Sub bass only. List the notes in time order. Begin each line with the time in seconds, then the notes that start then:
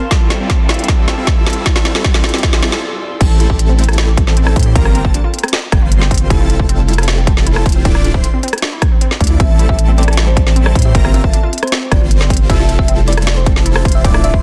0.11 F1
0.40 F1
0.88 F1
1.18 F1
3.21 A1
3.50 A1
4.56 A2
4.75 G1
5.05 G1
5.72 G1
5.82 G1
6.30 F1
6.60 F1
7.66 F1
7.85 D1
8.14 D1
9.21 D2
9.40 A1
9.69 A1
10.75 A2
10.95 G1
11.24 G1
11.92 G1
12.01 G1
12.50 F1
12.79 F1
13.85 F1
14.05 D1
14.34 D1